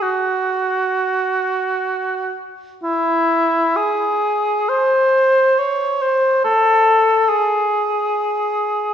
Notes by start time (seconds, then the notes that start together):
0.02 F#4
2.83 E4
3.76 G#4
4.69 C5
5.59 C#5
6.02 C5
6.44 A4
7.29 G#4